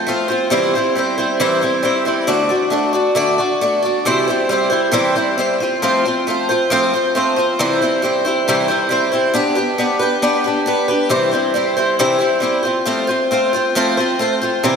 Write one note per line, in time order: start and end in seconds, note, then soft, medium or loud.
0.07 0.29 A3 medium
0.07 0.30 C4 medium
0.07 0.29 F4 medium
0.07 0.27 C5 medium
0.28 0.51 C4 soft
0.28 0.52 F4 soft
0.28 0.51 C5 soft
0.50 0.73 C3 medium
0.50 0.74 E3 medium
0.50 0.74 G3 medium
0.50 0.74 C4 medium
0.50 0.74 E4 medium
0.50 0.74 C5 medium
0.75 0.94 G3 soft
0.75 0.95 C4 soft
0.75 0.97 E4 soft
0.75 0.97 C5 soft
0.95 1.18 G3 medium
0.95 1.18 C4 medium
0.95 1.17 E4 medium
0.95 1.16 C5 medium
1.18 1.39 G3 soft
1.18 1.40 C4 soft
1.18 1.40 E4 soft
1.18 1.40 C5 soft
1.40 1.62 C3 medium
1.40 1.62 E3 medium
1.40 1.62 G3 medium
1.40 1.62 C4 medium
1.40 1.61 E4 medium
1.40 1.60 C5 medium
1.61 1.81 G3 soft
1.61 1.82 C4 soft
1.61 1.83 E4 soft
1.61 1.84 C5 soft
1.83 2.06 G3 medium
1.83 2.06 C4 medium
1.83 2.05 E4 medium
1.83 2.04 C5 medium
2.05 2.27 G3 soft
2.05 2.27 C4 soft
2.05 2.28 E4 soft
2.05 2.28 C5 soft
2.27 2.50 D3 medium
2.27 2.50 A3 medium
2.27 2.50 D4 medium
2.27 2.49 F#4 medium
2.27 2.48 D5 medium
2.49 2.70 D4 soft
2.49 2.71 F#4 soft
2.49 2.72 D5 soft
2.70 2.94 A3 medium
2.70 2.94 D4 medium
2.70 2.93 F#4 medium
2.70 2.92 D5 medium
2.93 3.15 D4 soft
2.93 3.15 F#4 soft
2.93 3.16 D5 medium
3.15 3.38 D3 medium
3.15 3.39 A3 medium
3.15 3.39 D4 medium
3.15 3.39 F#4 medium
3.15 3.37 D5 medium
3.38 3.60 D4 soft
3.38 3.61 F#4 soft
3.38 3.61 D5 soft
3.61 3.83 A3 medium
3.61 3.84 D4 medium
3.61 3.84 F#4 medium
3.61 3.81 D5 medium
3.83 4.06 D4 soft
3.83 4.06 F#4 soft
3.83 4.05 D5 soft
4.05 4.27 C3 medium
4.05 4.28 E3 medium
4.05 4.28 G3 medium
4.05 4.28 C4 medium
4.05 4.28 E4 medium
4.05 4.26 C5 medium
4.28 4.48 G3 soft
4.28 4.49 C4 soft
4.28 4.50 E4 soft
4.28 4.50 C5 medium
4.49 4.71 G3 medium
4.49 4.71 C4 medium
4.49 4.70 E4 medium
4.49 4.69 C5 medium
4.70 4.92 G3 soft
4.70 4.92 C4 soft
4.70 4.93 E4 soft
4.70 4.93 C5 medium
4.92 5.15 C3 medium
4.92 5.15 E3 medium
4.92 5.15 G3 medium
4.92 5.16 C4 medium
4.92 5.15 E4 medium
4.92 5.14 C5 medium
5.16 5.37 G3 soft
5.16 5.38 C4 soft
5.16 5.38 E4 soft
5.16 5.38 C5 soft
5.38 5.60 G3 medium
5.38 5.60 C4 medium
5.38 5.61 E4 medium
5.38 5.59 C5 medium
5.60 5.82 C4 soft
5.60 5.82 F4 soft
5.60 5.82 C5 soft
5.82 6.04 F3 medium
5.82 6.04 A3 medium
5.82 6.05 C4 medium
5.82 6.05 F4 medium
5.82 6.04 C5 medium
6.05 6.27 C4 soft
6.05 6.27 F4 medium
6.05 6.27 C5 soft
6.27 6.49 A3 medium
6.27 6.49 C4 medium
6.27 6.49 F4 medium
6.27 6.48 C5 medium
6.49 6.70 C4 soft
6.49 6.71 F4 soft
6.49 6.71 C5 medium
6.70 6.92 F3 medium
6.70 6.93 A3 medium
6.70 6.93 C4 medium
6.70 6.93 F4 medium
6.70 6.92 C5 medium
6.93 7.15 C4 soft
6.93 7.15 F4 soft
6.93 7.15 C5 soft
7.15 7.37 A3 medium
7.15 7.37 C4 medium
7.15 7.37 F4 medium
7.15 7.35 C5 medium
7.36 7.59 C4 soft
7.36 7.59 F4 soft
7.36 7.58 C5 soft
7.59 7.81 C3 medium
7.59 7.81 E3 medium
7.59 7.81 G3 medium
7.59 7.81 C4 medium
7.59 7.81 E4 medium
7.59 7.80 C5 medium
7.82 8.01 G3 soft
7.82 8.02 C4 soft
7.82 8.03 E4 medium
7.82 8.03 C5 medium
8.02 8.24 G3 medium
8.02 8.25 C4 medium
8.02 8.25 E4 medium
8.02 8.24 C5 medium
8.25 8.47 G3 soft
8.25 8.48 C4 soft
8.25 8.47 E4 medium
8.25 8.47 C5 medium
8.48 8.69 C3 medium
8.48 8.70 E3 medium
8.48 8.70 G3 medium
8.48 8.69 C4 medium
8.48 8.68 E4 medium
8.48 8.67 C5 medium
8.68 8.88 G3 soft
8.68 8.89 C4 soft
8.68 8.90 E4 soft
8.68 8.90 C5 medium
8.89 9.12 G3 medium
8.89 9.13 C4 medium
8.89 9.12 E4 medium
8.89 9.10 C5 medium
9.12 9.33 G3 soft
9.12 9.34 C4 soft
9.12 9.35 E4 medium
9.12 9.34 C5 soft
9.34 9.56 B3 medium
9.34 9.57 D4 medium
9.34 9.55 G4 medium
9.34 9.54 B4 medium
9.55 9.78 D4 soft
9.55 9.79 G4 soft
9.55 9.78 B4 medium
9.78 10.01 B3 medium
9.78 10.01 D4 medium
9.78 10.00 G4 medium
9.78 9.98 B4 medium
9.99 10.22 D4 soft
9.99 10.22 G4 soft
9.99 10.22 B4 medium
10.22 10.45 B3 medium
10.22 10.45 D4 medium
10.22 10.45 G4 medium
10.22 10.43 B4 medium
10.44 10.66 D4 soft
10.44 10.66 G4 soft
10.44 10.67 B4 soft
10.66 10.88 B3 medium
10.66 10.89 D4 medium
10.66 10.88 G4 medium
10.66 10.87 B4 medium
10.88 11.10 D4 soft
10.88 11.11 G4 soft
10.88 11.11 B4 medium
11.09 11.33 C3 medium
11.09 11.32 E3 medium
11.09 11.33 G3 medium
11.09 11.32 C4 medium
11.09 11.32 E4 medium
11.09 11.30 C5 medium
11.31 11.53 G3 soft
11.31 11.54 C4 soft
11.31 11.55 E4 soft
11.31 11.54 C5 soft
11.54 11.77 G3 medium
11.54 11.77 C4 medium
11.54 11.76 E4 medium
11.54 11.75 C5 medium
11.77 11.98 G3 soft
11.77 11.99 C4 soft
11.77 11.99 E4 medium
11.77 11.99 C5 medium
11.99 12.21 C3 medium
11.99 12.21 E3 medium
11.99 12.21 G3 medium
11.99 12.20 C4 medium
11.99 12.19 E4 medium
11.99 12.18 C5 medium
12.19 12.39 G3 soft
12.19 12.41 C4 soft
12.19 12.41 E4 soft
12.19 12.42 C5 soft
12.40 12.64 G3 medium
12.40 12.65 C4 medium
12.40 12.64 E4 medium
12.40 12.62 C5 medium
12.63 12.86 C4 soft
12.63 12.86 F4 soft
12.63 12.86 C5 soft
12.86 13.08 F3 medium
12.86 13.09 A3 medium
12.86 13.09 C4 medium
12.86 13.08 F4 medium
12.86 13.06 C5 medium
13.07 13.30 C4 soft
13.07 13.31 F4 soft
13.07 13.30 C5 medium
13.31 13.53 A3 medium
13.31 13.54 C4 medium
13.31 13.53 F4 medium
13.31 13.52 C5 medium
13.53 13.75 C4 soft
13.53 13.76 F4 medium
13.53 13.75 C5 medium
13.75 13.97 F3 medium
13.75 13.98 A3 medium
13.75 13.98 C4 medium
13.75 13.98 F4 medium
13.75 13.96 C5 medium
13.97 14.19 C4 soft
13.97 14.19 F4 soft
13.97 14.19 C5 medium
14.19 14.41 A3 medium
14.19 14.42 C4 medium
14.19 14.42 F4 medium
14.19 14.40 C5 medium
14.42 14.63 C4 soft
14.42 14.64 F4 medium
14.42 14.63 C5 medium
14.63 14.76 C3 medium
14.63 14.76 E3 medium
14.63 14.76 G3 medium
14.63 14.76 C4 medium
14.63 14.76 E4 medium
14.63 14.76 C5 medium